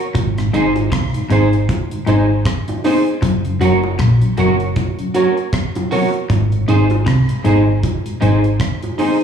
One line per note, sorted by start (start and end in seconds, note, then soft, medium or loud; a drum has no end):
0.15 0.52 G#1 loud
0.15 0.38 G#2 medium
0.15 kick loud
0.15 closed hi-hat medium
0.15 high bongo medium
0.38 0.47 G#2 medium
0.38 0.47 D#3 medium
0.38 cross-stick medium
0.38 closed hi-hat soft
0.53 0.91 G#1 medium
0.53 0.77 G#2 medium
0.53 0.66 G#3 medium
0.53 0.67 C4 medium
0.53 0.77 D#4 medium
0.53 0.71 D#4 loud
0.53 0.67 D#4 medium
0.53 0.77 G#4 medium
0.53 0.72 G#4 loud
0.53 0.77 C5 medium
0.53 0.72 C5 loud
0.53 closed hi-hat medium
0.76 closed hi-hat soft
0.76 high bongo medium
0.92 1.14 C2 medium
0.92 1.05 C3 medium
0.92 kick loud
0.92 cross-stick loud
0.92 closed hi-hat medium
1.14 1.24 G#2 medium
1.14 1.24 D#3 medium
1.14 closed hi-hat medium
1.30 1.67 G#1 medium
1.30 1.53 G#2 medium
1.30 1.43 G#3 medium
1.30 1.44 C4 medium
1.30 1.48 D#4 medium
1.30 1.54 D#4 medium
1.30 1.44 D#4 medium
1.30 1.54 G#4 medium
1.30 1.49 G#4 medium
1.30 1.54 C5 loud
1.30 1.49 C5 medium
1.30 closed hi-hat medium
1.30 low bongo medium
1.53 closed hi-hat soft
1.69 kick loud
1.69 closed hi-hat medium
1.69 high bongo medium
1.91 2.01 G#2 medium
1.91 2.00 D#3 medium
1.91 closed hi-hat medium
2.06 2.44 G#1 medium
2.06 2.30 G#2 medium
2.06 2.20 G#3 medium
2.06 2.20 C4 medium
2.06 2.25 D#4 medium
2.06 2.30 D#4 loud
2.06 2.20 D#4 medium
2.06 2.31 G#4 medium
2.06 2.25 G#4 medium
2.06 2.31 C5 loud
2.06 2.26 C5 medium
2.06 closed hi-hat medium
2.29 muted clean electric guitar stroke soft
2.45 kick loud
2.45 cross-stick loud
2.45 closed hi-hat medium
2.68 2.77 G#2 medium
2.68 2.77 D#3 medium
2.68 closed hi-hat soft
2.68 high bongo medium
2.84 2.97 G#3 medium
2.84 2.97 C4 medium
2.84 3.07 D#4 medium
2.84 2.97 D#4 medium
2.84 3.02 D#4 medium
2.84 3.06 G#4 medium
2.84 3.03 G#4 medium
2.84 3.06 C5 loud
2.84 3.03 C5 loud
2.84 cross-stick medium
2.84 open hi-hat medium
2.84 low bongo medium
3.06 3.13 G#4 soft
3.06 3.13 C5 soft
3.06 closed hi-hat soft
3.22 3.59 F#1 loud
3.22 3.45 F#2 medium
3.22 kick loud
3.22 closed hi-hat medium
3.22 high bongo medium
3.45 3.54 F#2 medium
3.45 3.54 C#3 medium
3.45 closed hi-hat soft
3.61 3.98 F#1 medium
3.61 3.84 F#2 medium
3.61 3.73 F#3 medium
3.61 3.74 A#3 medium
3.61 3.74 C#4 medium
3.61 3.79 F#4 medium
3.61 3.84 F#4 medium
3.61 3.79 A#4 medium
3.61 3.84 A#4 medium
3.61 3.85 C#5 medium
3.61 3.80 C#5 medium
3.61 closed hi-hat medium
3.83 high bongo medium
3.99 4.21 A#1 medium
3.99 4.12 A#2 medium
3.99 kick loud
3.99 cross-stick loud
3.99 closed hi-hat medium
4.21 4.31 F#2 medium
4.21 4.31 C#3 medium
4.21 closed hi-hat medium
4.37 4.75 F#1 medium
4.37 4.61 F#2 medium
4.37 4.50 F#3 medium
4.37 4.51 A#3 medium
4.37 4.51 C#4 medium
4.37 4.55 F#4 medium
4.37 4.61 F#4 medium
4.37 4.61 A#4 medium
4.37 4.56 A#4 medium
4.37 4.61 C#5 medium
4.37 4.56 C#5 medium
4.37 closed hi-hat medium
4.37 low bongo medium
4.60 closed hi-hat soft
4.76 kick loud
4.76 closed hi-hat medium
4.76 high bongo medium
4.99 5.08 F#2 medium
4.99 5.08 C#3 medium
4.99 closed hi-hat soft
5.14 5.27 F#3 medium
5.14 5.27 A#3 medium
5.14 5.27 C#4 medium
5.14 5.32 F#4 medium
5.14 5.38 F#4 medium
5.14 5.38 A#4 medium
5.14 5.33 A#4 medium
5.14 5.33 C#5 medium
5.14 5.38 C#5 loud
5.14 closed hi-hat medium
5.37 muted clean electric guitar stroke soft
5.37 closed hi-hat soft
5.53 kick loud
5.53 cross-stick loud
5.53 closed hi-hat medium
5.75 5.84 F#2 medium
5.75 5.84 C#3 medium
5.75 closed hi-hat soft
5.75 high bongo medium
5.91 6.04 F#3 medium
5.91 6.04 A#3 medium
5.91 6.04 C#4 medium
5.91 6.09 F#4 medium
5.91 6.14 F#4 medium
5.91 6.09 A#4 medium
5.91 6.13 A#4 medium
5.91 6.13 C#5 loud
5.91 6.10 C#5 medium
5.91 open hi-hat medium
5.91 low bongo medium
6.14 6.21 A#4 soft
6.14 6.21 C#5 soft
6.14 closed hi-hat soft
6.30 6.66 G#1 loud
6.30 6.53 G#2 medium
6.30 kick loud
6.30 closed hi-hat loud
6.30 high bongo medium
6.52 6.61 G#2 medium
6.52 closed hi-hat soft
6.68 7.05 G#1 medium
6.68 6.91 G#2 medium
6.68 6.81 D#3 medium
6.68 6.81 G#3 medium
6.68 6.81 C4 medium
6.68 6.86 D#4 medium
6.68 6.91 D#4 medium
6.68 6.91 G#4 medium
6.68 6.86 G#4 loud
6.68 6.92 C5 loud
6.68 6.87 C5 loud
6.68 closed hi-hat medium
6.90 closed hi-hat soft
6.90 high bongo medium
7.06 7.28 C2 medium
7.06 7.20 C3 medium
7.06 kick loud
7.06 cross-stick loud
7.06 closed hi-hat medium
7.29 7.38 G#2 medium
7.29 closed hi-hat medium
7.44 7.82 G#1 medium
7.44 7.68 G#2 medium
7.44 7.57 D#3 medium
7.44 7.57 G#3 medium
7.44 7.58 C4 medium
7.44 7.63 D#4 medium
7.44 7.68 D#4 medium
7.44 7.68 G#4 medium
7.44 7.63 G#4 medium
7.44 7.68 C5 loud
7.44 7.63 C5 medium
7.44 closed hi-hat medium
7.44 low bongo medium
7.83 kick loud
7.83 closed hi-hat medium
7.83 high bongo medium
8.06 8.15 G#2 medium
8.06 closed hi-hat medium
8.21 8.59 G#1 medium
8.21 8.44 G#2 medium
8.21 8.34 D#3 medium
8.21 8.34 G#3 medium
8.21 8.34 C4 medium
8.21 8.39 D#4 medium
8.21 8.45 D#4 medium
8.21 8.39 G#4 medium
8.21 8.45 G#4 medium
8.21 8.40 C5 medium
8.21 8.45 C5 loud
8.21 closed hi-hat medium
8.44 muted clean electric guitar stroke soft
8.44 closed hi-hat soft
8.60 kick loud
8.60 cross-stick loud
8.60 closed hi-hat medium
8.82 8.91 G#2 medium
8.82 closed hi-hat soft
8.82 high bongo medium
8.98 9.11 D#3 medium
8.98 9.11 G#3 medium
8.98 9.11 C4 medium
8.98 9.16 D#4 medium
8.98 9.21 D#4 medium
8.98 9.20 G#4 medium
8.98 9.17 G#4 medium
8.98 9.20 C5 medium
8.98 9.17 C5 medium
8.98 open hi-hat medium
8.98 low bongo medium